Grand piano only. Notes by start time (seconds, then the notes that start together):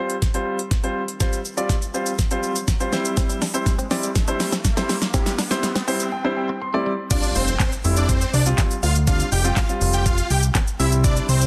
Already playing: G3 C4 F4 C5
0.34 G3 C4 F4 C5
0.83 G3 C4 F4 C5
1.20 G3 C4 F4 C5
1.57 G3 C4 F4 D5
1.94 G3 C4 F4 C5
2.31 G3 C4 F4 C5
2.80 G3 C4 F4 C5
2.92 G3 C4 E4 C5
3.54 G3 C4 E4 C5
3.91 G3 C4 E4 D5
4.28 G3 C4 E4 C5
4.77 G3 C4 E4 C5
5.14 G3 C4 E4 G4
5.50 G3 C4 E4 C5
5.87 G3 C4 E4 C5 E5
6.12 G5
6.24 G3 C4 E4 C5
6.37 G5
6.62 C6
6.74 G3 C4 E4 D5
7.11 G3 C4 F4
7.84 G3 C4 E4
8.46 G3 C4 F4
9.07 G3 C4 D4
9.44 G3 C4 F4
9.69 G3 C4 F4
10.79 G3 C4 E4